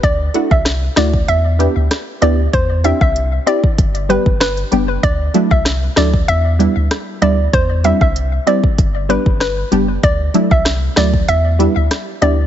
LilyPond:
<<
  \new Staff \with { instrumentName = "Synth pluck" } { \time 4/4 \key g \major \tempo 4 = 96 d''16 r8 e''16 r8 d''16 r16 e''8. r8. d''16 r16 | c''16 r16 e''16 e''16 r8 d''16 r8. b'16 r16 b'8. r16 | d''16 r8 e''16 r8 d''16 r16 e''8. r8. d''16 r16 | c''16 r16 e''16 e''16 r8 d''16 r8. b'16 r16 b'8. r16 |
d''16 r8 e''16 r8 d''16 r16 e''8. r8. d''16 r16 | }
  \new Staff \with { instrumentName = "Synth stab" } { \time 4/4 \key g \major r8 <a d' e' fis'>8 r8 <a d' e' fis'>8 r8 <b d' e' g'>8 r8 <b d' e' g'>8 | r8 <c' d' e' g'>8 r8 <c' d' e' g'>8 r8 <g b d' g'>8 r8 <g b d' g'>8 | r8 <fis a d' e'>8 r8 <fis a d' e'>8 r8 <g b d' e'>8 r8 <g b d' e'>8 | r8 <g c' d' e'>8 r8 <g c' d' e'>8 r8 <g b d' g'>8 r8 <g b d' g'>8 |
r8 <fis a d' e'>8 r8 <fis a d' e'>8 r8 <g b d' e'>8 r8 <g b d' e'>8 | }
  \new Staff \with { instrumentName = "Sub bass" } { \clef bass \time 4/4 \key g \major d,8 r16 c,8. d,8 e,8. d,16 r8 d,8 | e,8. c,8. r8 g,,8. g,,8. fis,,8 | d,8 r16 c,8. d,8 e,8. d,16 r8 d,8 | e,8. c,8. r8 g,,8. g,,8. fis,,8 |
d,8 r16 c,8. d,8 e,8. d,16 r8 d,8 | }
  \new DrumStaff \with { instrumentName = "Drums" } \drummode { \time 4/4 <hh bd>8 hh16 bd16 <hh ss sn>8 <hh ss sn>16 bd16 hh8 hh8 <hh ss sn>8 hh8 | <hh bd>8 hh16 bd16 hh8 hh16 bd16 <hh bd>16 hh16 hh16 bd16 <hh ss sn>16 hh16 hh8 | <hh bd>8 hh16 bd16 <hh ss sn>8 <hh ss sn>16 bd16 hh8 hh8 <hh ss sn>8 hh8 | <hh bd>8 hh16 bd16 hh8 hh16 bd16 <hh bd>8 hh16 bd16 <hh ss sn>8 hh8 |
<hh bd>8 hh16 bd16 <hh ss sn>8 <hh ss sn>16 bd16 hh8 hh8 <hh ss sn>8 hh8 | }
>>